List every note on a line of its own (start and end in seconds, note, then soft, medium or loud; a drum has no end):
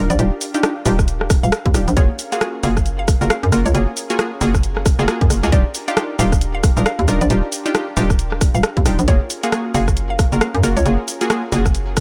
0.00 1.93 D4 medium
0.00 1.93 G4 medium
0.00 1.93 A#4 medium
0.00 5.48 F5 medium
0.10 0.18 A#1 loud
0.10 0.24 D5 medium
0.10 closed hi-hat soft
0.10 cabasa soft
0.19 0.31 D#1 loud
0.19 0.37 D4 medium
0.19 0.37 D#4 medium
0.19 0.37 F4 medium
0.19 0.37 G4 medium
0.19 closed hi-hat medium
0.19 cabasa soft
0.41 open hi-hat loud
0.41 cabasa medium
0.54 0.62 D4 medium
0.54 0.62 D#4 medium
0.54 0.62 F4 medium
0.54 0.62 G4 loud
0.54 closed hi-hat medium
0.54 cabasa soft
0.63 0.76 D4 medium
0.63 0.76 D#4 medium
0.63 0.76 F4 medium
0.63 0.76 G4 medium
0.63 cross-stick loud
0.63 closed hi-hat medium
0.63 cabasa soft
0.86 1.41 D#1 loud
0.86 0.98 D4 loud
0.86 0.98 D#4 medium
0.86 0.98 F4 medium
0.86 0.98 G4 loud
0.86 open hi-hat medium
0.86 cabasa medium
0.99 kick medium
0.99 cross-stick medium
0.99 cabasa soft
1.08 closed hi-hat medium
1.08 cabasa soft
1.21 cross-stick medium
1.30 kick loud
1.30 cross-stick medium
1.30 open hi-hat loud
1.30 cabasa medium
1.43 1.51 D#1 loud
1.43 1.57 F5 medium
1.43 cabasa soft
1.52 cross-stick loud
1.52 closed hi-hat medium
1.52 cabasa soft
1.66 1.73 D#2 loud
1.66 kick loud
1.66 closed hi-hat soft
1.74 1.86 D#1 medium
1.74 1.87 D4 medium
1.74 1.87 D#4 medium
1.74 1.87 F4 medium
1.74 1.87 G4 medium
1.74 cross-stick medium
1.74 open hi-hat loud
1.74 cabasa medium
1.88 1.96 A#1 loud
1.88 closed hi-hat soft
1.88 cabasa soft
1.97 2.08 F#1 loud
1.97 2.09 A#3 medium
1.97 5.49 C#4 medium
1.97 2.09 F4 medium
1.97 2.09 F#4 medium
1.97 2.09 G#4 medium
1.97 5.49 G#4 medium
1.97 9.04 A#4 medium
1.97 2.13 C#5 loud
1.97 kick loud
1.97 closed hi-hat medium
1.97 cabasa soft
2.19 open hi-hat loud
2.19 cabasa medium
2.32 2.40 A#3 medium
2.32 2.40 F4 medium
2.32 2.40 F#4 medium
2.32 2.40 G#4 medium
2.32 2.46 F5 loud
2.32 closed hi-hat medium
2.32 cabasa soft
2.41 2.61 A#3 medium
2.41 2.61 F4 medium
2.41 2.61 F#4 medium
2.41 2.61 G#4 medium
2.41 cross-stick loud
2.41 closed hi-hat medium
2.41 cabasa soft
2.63 3.18 F#1 loud
2.63 2.76 A#3 medium
2.63 2.76 F4 medium
2.63 2.76 F#4 medium
2.63 2.76 G#4 loud
2.63 2.80 F5 loud
2.63 open hi-hat medium
2.63 cabasa medium
2.77 kick medium
2.77 cross-stick medium
2.77 cabasa soft
2.86 closed hi-hat medium
2.86 cabasa soft
2.99 3.13 F5 medium
3.08 kick loud
3.08 cross-stick medium
3.08 open hi-hat loud
3.08 cabasa medium
3.21 3.29 F#1 loud
3.21 3.37 A#3 medium
3.21 3.37 F4 medium
3.21 3.37 F#4 medium
3.21 3.37 A#4 medium
3.21 cabasa soft
3.30 3.47 F5 loud
3.30 cross-stick loud
3.30 closed hi-hat medium
3.30 cabasa soft
3.43 3.51 F#2 loud
3.43 closed hi-hat soft
3.52 3.64 F#1 medium
3.52 3.65 A#3 medium
3.52 3.65 F4 medium
3.52 3.65 F#4 medium
3.52 3.65 A#4 medium
3.52 cross-stick medium
3.52 open hi-hat medium
3.52 cabasa medium
3.66 3.73 C#2 medium
3.66 3.80 C#5 medium
3.66 closed hi-hat soft
3.66 cabasa soft
3.74 3.86 F#1 loud
3.74 3.92 A#3 medium
3.74 3.92 F4 medium
3.74 3.92 F#4 medium
3.74 3.92 G#4 medium
3.74 closed hi-hat medium
3.74 cabasa soft
3.97 open hi-hat loud
3.97 cabasa medium
4.10 4.18 A#3 medium
4.10 4.18 F4 medium
4.10 4.18 F#4 medium
4.10 4.18 G#4 loud
4.10 closed hi-hat medium
4.10 cabasa soft
4.19 4.31 A#3 medium
4.19 4.31 F4 medium
4.19 4.31 F#4 medium
4.19 4.31 G#4 medium
4.19 cross-stick loud
4.19 closed hi-hat medium
4.19 cabasa soft
4.41 4.96 F#1 loud
4.41 4.54 A#3 loud
4.41 4.54 F4 medium
4.41 4.54 F#4 medium
4.41 4.54 G#4 loud
4.41 open hi-hat medium
4.41 cabasa medium
4.55 kick medium
4.55 cross-stick medium
4.55 cabasa soft
4.63 closed hi-hat medium
4.63 cabasa soft
4.77 cross-stick medium
4.86 kick loud
4.86 cross-stick medium
4.86 open hi-hat loud
4.86 cabasa medium
4.99 5.07 F#1 loud
4.99 5.07 A#3 medium
4.99 5.07 F4 medium
4.99 5.07 F#4 medium
4.99 5.07 G#4 loud
4.99 5.13 G#4 loud
4.99 cabasa soft
5.08 5.40 A#3 medium
5.08 5.40 F4 medium
5.08 5.40 F#4 medium
5.08 5.40 G#4 medium
5.08 cross-stick loud
5.08 closed hi-hat medium
5.08 cabasa soft
5.21 5.29 F#2 medium
5.21 kick loud
5.21 closed hi-hat soft
5.30 5.42 F#1 medium
5.30 cross-stick medium
5.30 open hi-hat medium
5.30 cabasa medium
5.43 5.51 C#2 loud
5.43 5.50 A#3 medium
5.43 5.50 F4 medium
5.43 5.50 F#4 medium
5.43 5.50 G#4 loud
5.43 closed hi-hat soft
5.43 cabasa soft
5.52 5.64 D#1 loud
5.52 5.65 D4 medium
5.52 9.04 D4 medium
5.52 5.65 D#4 medium
5.52 5.65 F4 medium
5.52 9.04 F4 medium
5.52 5.65 G4 medium
5.52 9.04 G4 medium
5.52 5.69 D5 medium
5.52 kick loud
5.52 closed hi-hat medium
5.52 cabasa soft
5.75 open hi-hat loud
5.75 cabasa medium
5.88 5.95 D4 medium
5.88 5.95 D#4 medium
5.88 5.95 F4 medium
5.88 5.95 G4 medium
5.88 6.02 F5 loud
5.88 closed hi-hat medium
5.88 cabasa soft
5.97 6.17 D4 medium
5.97 6.17 D#4 medium
5.97 6.17 F4 medium
5.97 6.17 G4 medium
5.97 cross-stick loud
5.97 closed hi-hat medium
5.97 cabasa soft
6.19 6.74 D#1 loud
6.19 6.31 D4 medium
6.19 6.31 D#4 medium
6.19 6.31 F4 medium
6.19 6.31 G4 loud
6.19 6.36 F5 loud
6.19 open hi-hat medium
6.19 cabasa medium
6.32 kick medium
6.32 cross-stick medium
6.32 cabasa soft
6.41 closed hi-hat medium
6.41 cabasa soft
6.55 6.69 F5 medium
6.63 kick loud
6.63 cross-stick medium
6.63 open hi-hat loud
6.63 cabasa medium
6.77 6.85 D#1 loud
6.77 6.92 D4 medium
6.77 6.92 D#4 medium
6.77 6.92 F4 medium
6.77 6.92 A#4 medium
6.77 cabasa soft
6.86 7.02 F5 loud
6.86 cross-stick loud
6.86 closed hi-hat medium
6.86 cabasa soft
6.99 7.07 D#2 medium
6.99 closed hi-hat soft
7.08 7.20 D#1 medium
7.08 7.20 D4 medium
7.08 7.20 D#4 medium
7.08 7.20 F4 medium
7.08 7.20 A#4 medium
7.08 cross-stick medium
7.08 open hi-hat medium
7.08 cabasa medium
7.21 7.29 A#1 loud
7.21 7.35 D5 loud
7.21 closed hi-hat soft
7.21 cabasa soft
7.30 7.42 D#1 loud
7.30 7.48 D4 medium
7.30 7.48 D#4 medium
7.30 7.48 F4 medium
7.30 7.48 G4 medium
7.30 closed hi-hat medium
7.30 cabasa soft
7.52 open hi-hat loud
7.52 cabasa medium
7.66 7.73 D4 medium
7.66 7.73 D#4 medium
7.66 7.73 F4 medium
7.66 7.73 G4 loud
7.66 closed hi-hat medium
7.66 cabasa soft
7.74 7.87 D4 medium
7.74 7.87 D#4 medium
7.74 7.87 F4 medium
7.74 7.87 G4 medium
7.74 cross-stick loud
7.74 closed hi-hat medium
7.74 cabasa soft
7.97 8.52 D#1 loud
7.97 8.09 D4 loud
7.97 8.09 D#4 medium
7.97 8.09 F4 medium
7.97 8.09 G4 loud
7.97 open hi-hat medium
7.97 cabasa medium
8.10 kick medium
8.10 cross-stick medium
8.10 cabasa soft
8.19 closed hi-hat medium
8.19 cabasa soft
8.32 cross-stick medium
8.41 kick loud
8.41 cross-stick medium
8.41 open hi-hat loud
8.41 cabasa medium
8.55 8.62 D#1 loud
8.55 8.69 F5 loud
8.55 cabasa soft
8.63 cross-stick loud
8.63 closed hi-hat medium
8.63 cabasa soft
8.77 8.85 D#2 medium
8.77 kick loud
8.77 closed hi-hat soft
8.86 8.97 D#1 medium
8.86 8.98 D4 medium
8.86 8.98 D#4 medium
8.86 8.98 F4 medium
8.86 8.98 G4 medium
8.86 cross-stick medium
8.86 open hi-hat loud
8.86 cabasa medium
8.99 9.07 A#1 loud
8.99 closed hi-hat soft
8.99 cabasa soft
9.08 9.19 F#1 loud
9.08 9.20 A#3 medium
9.08 12.00 C#4 medium
9.08 9.20 F4 medium
9.08 12.00 F4 medium
9.08 9.20 F#4 medium
9.08 9.20 G#4 medium
9.08 12.00 G#4 medium
9.08 12.00 A#4 loud
9.08 9.25 C#5 loud
9.08 kick loud
9.08 closed hi-hat medium
9.08 cabasa soft
9.30 open hi-hat loud
9.30 cabasa medium
9.43 9.51 A#3 medium
9.43 9.51 F4 medium
9.43 9.51 F#4 medium
9.43 9.51 G#4 medium
9.43 9.58 F5 loud
9.43 closed hi-hat medium
9.43 cabasa soft
9.52 9.72 A#3 medium
9.52 9.72 F4 medium
9.52 9.72 F#4 medium
9.52 9.72 G#4 medium
9.52 cross-stick loud
9.52 closed hi-hat medium
9.52 cabasa soft
9.74 10.30 F#1 loud
9.74 9.87 A#3 medium
9.74 9.87 F4 medium
9.74 9.87 F#4 medium
9.74 9.87 G#4 loud
9.74 9.91 F5 loud
9.74 open hi-hat medium
9.74 cabasa medium
9.88 kick medium
9.88 cross-stick medium
9.88 cabasa soft
9.97 closed hi-hat medium
9.97 cabasa soft
10.10 10.24 F5 medium
10.19 kick loud
10.19 cross-stick medium
10.19 open hi-hat loud
10.19 cabasa medium
10.32 10.40 F#1 loud
10.32 10.48 A#3 medium
10.32 10.48 F4 medium
10.32 10.48 F#4 medium
10.32 10.48 A#4 medium
10.32 cabasa soft
10.41 10.58 F5 loud
10.41 cross-stick loud
10.41 closed hi-hat medium
10.41 cabasa soft
10.55 10.62 F#2 loud
10.55 closed hi-hat soft
10.63 10.75 F#1 medium
10.63 10.76 A#3 medium
10.63 10.76 F4 medium
10.63 10.76 F#4 medium
10.63 10.76 A#4 loud
10.63 cross-stick medium
10.63 open hi-hat loud
10.63 cabasa medium
10.77 10.84 C#2 loud
10.77 10.91 C#5 loud
10.77 closed hi-hat soft
10.77 cabasa soft
10.86 10.97 F#1 loud
10.86 11.03 A#3 medium
10.86 11.03 F4 medium
10.86 11.03 F#4 medium
10.86 11.03 G#4 medium
10.86 closed hi-hat medium
10.86 cabasa soft
11.08 open hi-hat loud
11.08 cabasa medium
11.21 11.29 A#3 loud
11.21 11.29 F4 medium
11.21 11.29 F#4 medium
11.21 11.29 G#4 loud
11.21 closed hi-hat medium
11.21 cabasa soft
11.30 11.43 A#3 medium
11.30 11.43 F4 medium
11.30 11.43 F#4 medium
11.30 11.43 G#4 medium
11.30 cross-stick loud
11.30 closed hi-hat medium
11.30 cabasa soft
11.52 12.00 F#1 loud
11.52 11.65 A#3 loud
11.52 11.65 F4 medium
11.52 11.65 F#4 medium
11.52 11.65 G#4 loud
11.52 open hi-hat loud
11.52 cabasa medium
11.66 kick medium
11.66 cross-stick medium
11.66 cabasa soft
11.75 closed hi-hat medium
11.75 cabasa soft
11.97 kick loud
11.97 cross-stick medium
11.97 open hi-hat loud
11.97 cabasa medium